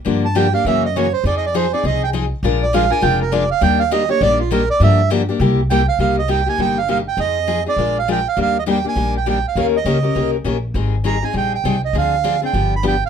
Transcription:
X:1
M:4/4
L:1/8
Q:"Swing" 1/4=202
K:Fdor
V:1 name="Accordion"
z =a g f _f e _d c | (3d e d c d e g z2 | z d f a g B d f | g f e _d =d F B d |
=e2 z4 g f | [K:Cm] f e g a g f f g | e3 d2 f g f | f e g a2 g g f |
f e4 z3 | z2 b a g g2 e | f3 g2 =b g f |]
V:2 name="Steel-string acoustic guitar"
[D,F,B,DG] z [D,F,B,DG] [B,DG] [_D,_F,B,_D_G] z [D,F,B,DG] z | [F,CEA] z [F,CEA] [CEA] [F,CEA] z [F,CEA] z | [F,A,DFB] z [F,A,DFB] [DFB] [F,A,DFB] z [F,A,DFB] z | [E,G,B,DG] z [E,G,B,DG] [B,DG] [E,G,B,DG] z [E,G,B,DG] z |
[D,F,B,DG] z [D,F,B,DG] [B,DG] [C,G,B,=EG] z [C,G,B,EG] z | [K:Cm] [C,G,B,EG] z [C,G,B,EG] [B,EG] [C,G,B,EG] z [C,G,B,EG] z | [F,CEA] z [F,CEA] [CEA] [F,A,DFB] z [F,A,DFB] z | [E,G,B,DG] z [E,G,B,DG] [B,DG] [E,G,B,DG] z [E,G,B,DG] z |
[E,B,_DGB] z [E,B,DGB] [DGB] [E,B,DGB] z [E,B,DGB] z | [E,G,CEA] z [E,G,CEA] [CEA] [E,G,CEA] z [E,G,CEA] z | [D,F,CDA] z [D,F,CDA] [CDA] [D,F,=B,DG] z [D,F,B,DG] z |]
V:3 name="Upright bass" clef=bass
G,,4 _G,,4 | F,,4 C,,4 | B,,,4 F,,,4 | E,,4 B,,,4 |
G,,4 C,,4 | [K:Cm] C,,4 G,,,4 | F,,4 B,,,4 | E,,4 B,,,4 |
E,,2 _D,,2 C,,2 B,,,2 | A,,,4 B,,,2 C,,2 | D,,4 G,,,4 |]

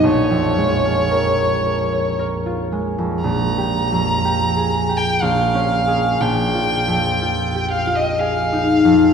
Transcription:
X:1
M:3/4
L:1/16
Q:1/4=60
K:Bbdor
V:1 name="Violin"
d8 z4 | b6- b g f4 | g6 f e f4 |]
V:2 name="Harp"
[B,,,^A] F,, _A, F B d B d B F A, F,, | (3B,,,2 G2 F,,2 (3G2 A2 G2 (3B,,,2 D2 [Ae]2 | (3B,,,2 F2 F,,2 (3F2 G2 F2 (3A2 E2 F,,2 |]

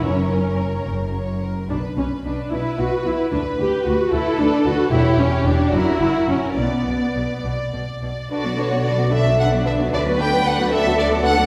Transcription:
X:1
M:6/8
L:1/16
Q:3/8=74
K:Bm
V:1 name="Violin section"
c2 ^A2 c2 A2 c2 A2 | B2 B2 B2 B2 B2 B2 | B2 B2 B2 B2 B2 B2 | c2 c2 c2 ^A2 A2 A2 |
d2 d2 d2 d2 d2 d2 | d2 c2 d2 e2 f2 e2 | d2 g2 f2 e2 d2 f2 |]
V:2 name="Violin section"
^A8- A z3 | z6 B6 | B6 A6 | G6 F6 |
d8- d z3 | [DB] [Fd] [DB] [Fd] [DB] [Fd] [DB] [Fd] [DB] [Fd] [DB] [Fd] | [DB] [Fd] [DB] [Fd] [DB] [Fd] [DB] [Fd] [DB] [Fd] [DB] [Fd] |]
V:3 name="Viola section"
C6 z6 | D2 C2 D2 E2 F2 E2 | D2 G2 F2 E2 D2 F2 | E2 C2 D2 E4 C2 |
B,6 z6 | [D,D] [F,B,] [D,D] [F,B,] [D,D] [F,B,] [D,D] [F,B,] [D,D] [F,B,] [D,D] [F,B,] | [D,D] [F,B,] [D,D] [F,B,] [D,D] [F,B,] [D,D] [F,B,] [D,D] [F,B,] [D,D] [F,B,] |]
V:4 name="Cello section" clef=bass
F,,6 F,,6 | B,,2 B,,2 B,,2 B,,2 B,,2 B,,2 | D,,2 D,,2 D,,2 D,,2 D,,2 D,,2 | E,,2 E,,2 E,,2 F,,2 F,,2 F,,2 |
B,,2 B,,2 B,,2 B,,2 B,,2 B,,2 | F6 D6 | B6 A6 |]
V:5 name="Double bass section" clef=bass
F,,,6 F,,,6 | B,,,2 B,,,2 B,,,2 B,,,2 B,,,2 B,,,2 | D,,2 D,,2 D,,2 D,,2 D,,2 D,,2 | E,,,2 E,,,2 E,,,2 F,,,2 F,,,2 F,,,2 |
B,,,2 B,,,2 B,,,2 B,,,2 B,,,2 B,,,2 | B,,,12 | D,,12 |]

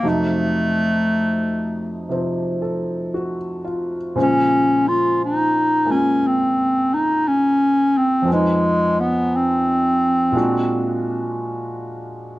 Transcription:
X:1
M:4/4
L:1/16
Q:"Swing" 1/4=58
K:Bbm
V:1 name="Clarinet"
=A,8 z8 | D2 F2 E2 D2 C2 E2 D2 C2 | A,2 _C2 =C8 z4 |]
V:2 name="Grand piano"
z8 z2 =A2 G2 F2- | F z12 z3 | z16 |]
V:3 name="Grand piano" clef=bass
[F,,C,G,=A,E]8 [C,F,C]8 | [B,,D,F,A,c]6 [A,B,F]8- [A,B,F]2 | [F,,F,A,E_c]8 [B,,A,=DFG]8 |]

